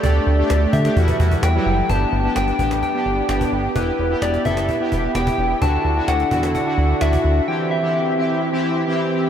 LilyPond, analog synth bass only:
\new Staff \with { instrumentName = "Analog synth bass" } { \clef bass \time 4/4 \key g \major \tempo 4 = 129 d,8 d,8 d,8 d8 e,8 e,8 e,8 fis,,8 | g,,8 g,,8 g,,8 a,,8. r16 g,,8 g,,8 g,,8 | e,,8 e,,8 e,,8 fis,,8. r16 e,,8 e,,8 e,,8 | d,8 d,8 d,8 e,8. r16 d,8 d,8 d,8 |
r1 | }